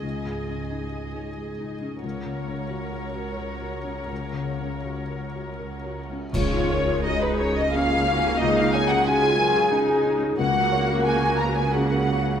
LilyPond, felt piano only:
\new Staff \with { instrumentName = "Felt piano" } { \time 3/4 \key des \major \tempo 4 = 89 \tuplet 3/2 { <des, des'>8 aes,8 des'8 ees'8 aes'8 ees'8 aes'8 ees'8 des'8 } | \tuplet 3/2 { des,8 des8 des'8 ges'8 bes'8 ges'8 bes'8 ges'8 des'8 } | \tuplet 3/2 { des,8 des8 des'8 ges'8 bes'8 ges'8 bes'8 ges'8 des'8 } | des,16 ees'16 des''16 aes'16 ges'16 aes'16 bes'16 aes'16 des'16 aes'16 ees'16 aes'16 |
des,16 ees'16 des''16 aes'16 ges'16 aes'16 bes'16 aes'16 des'16 aes'16 ees'16 aes'16 | des,16 ges'16 des''16 bes'16 aes'16 bes'16 ces''16 bes'16 des'16 bes'16 ges'16 bes'16 | }